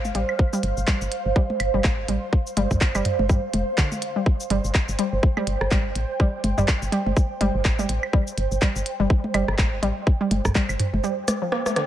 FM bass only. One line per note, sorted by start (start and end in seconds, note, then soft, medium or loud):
0.05 0.12 G1 medium
0.15 0.24 A1 medium
0.63 0.73 G1 loud
0.77 0.84 G1 medium
1.02 1.08 G1 medium
1.26 1.33 G1 medium
1.60 1.69 G1 medium
1.74 1.81 G1 medium
1.84 2.00 A1 loud
1.98 2.05 G1 medium
2.09 2.18 A1 medium
2.57 2.66 G1 loud
2.71 2.78 G1 medium
2.95 3.02 G1 medium
3.19 3.31 G1 medium
3.29 3.39 G2 medium
3.54 3.63 F1 medium
4.50 4.60 G1 loud
4.65 4.71 G1 medium
4.89 4.95 G1 medium
5.13 5.20 G1 medium
5.47 5.56 G1 medium
5.61 5.68 G1 medium
5.71 5.87 A1 loud
5.85 5.92 G1 medium
5.96 6.05 A1 medium
6.44 6.53 G1 loud
6.58 6.65 G1 medium
6.82 6.89 G1 medium
7.06 7.13 G1 medium
7.41 7.50 G1 medium
7.55 7.62 G1 medium
7.65 7.81 A1 medium
7.79 7.86 G1 medium
7.89 7.98 A1 medium
8.38 8.47 G1 loud
8.52 8.58 G1 medium
8.76 8.83 G1 loud
9.00 9.07 G1 loud
9.34 9.44 G1 medium
9.48 9.55 G1 medium
9.58 9.74 A1 loud
9.72 9.79 G1 medium
9.83 9.92 A1 medium
10.31 10.40 G1 loud
10.45 10.52 G1 medium
10.69 10.76 G1 medium
10.93 11.00 G1 loud